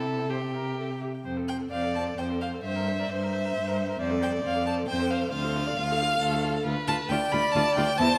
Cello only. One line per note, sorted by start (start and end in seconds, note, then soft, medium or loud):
0.00 1.03 C3 medium
1.25 1.66 F2 medium
1.72 2.12 F2 medium
2.18 2.58 F2 medium
2.64 3.05 G2 medium
3.10 3.50 G2 medium
3.56 3.95 G2 medium
4.00 4.39 F2 medium
4.45 4.83 F2 medium
4.89 5.28 F2 medium
5.34 5.73 D2 medium
5.79 6.17 D2 medium
6.22 6.60 D2 medium
6.66 6.74 D2 medium
6.88 6.96 D2 medium
7.10 7.18 D2 medium
7.33 7.41 D2 medium
7.56 7.64 D2 medium
7.77 7.85 D2 medium
8.00 8.08 E2 loud